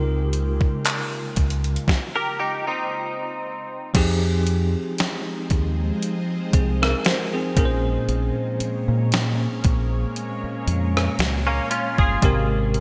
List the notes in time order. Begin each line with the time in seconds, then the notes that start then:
Already playing: C#2 C#3 G#3 A#3 D#4 F4 A#4
0.33 closed hi-hat
0.61 kick
0.85 clap, closed hi-hat
1.36 C#2, kick, closed hi-hat
1.50 closed hi-hat
1.64 closed hi-hat
1.76 closed hi-hat
1.88 kick, snare
2.16 G4 A#4
2.39 D#4 G4
2.67 C4 D#4
3.94 F2 F3 G#3 C4 D#4 G4 G#4, kick, closed hi-hat, crash
4.47 closed hi-hat
4.98 snare, closed hi-hat
5.50 D#2, kick, closed hi-hat
6.03 closed hi-hat
6.53 C2 C4 G#4, kick, closed hi-hat
6.82 A#4, cross-stick
7.05 D#4 C5, snare, closed hi-hat
7.34 C4 G#4
7.56 A#1 A#2 G#3 A#3 C#4 G#4 A#4, kick, closed hi-hat
7.65 C5
8.08 A#1, closed hi-hat
8.60 muted fingered electric bass stroke, closed hi-hat
8.88 A#2
9.12 snare, closed hi-hat
9.64 A#1, kick, closed hi-hat
10.16 closed hi-hat
10.43 muted fingered electric bass stroke
10.67 F2, closed hi-hat
10.97 cross-stick
11.19 C#2, snare, closed hi-hat
11.47 A#3 C#4
11.71 C#4 F4, closed hi-hat
11.98 G1 F4 G#4, kick
12.22 G#1 C3 G#3 C4 G4 A#4, kick, closed hi-hat
12.74 closed hi-hat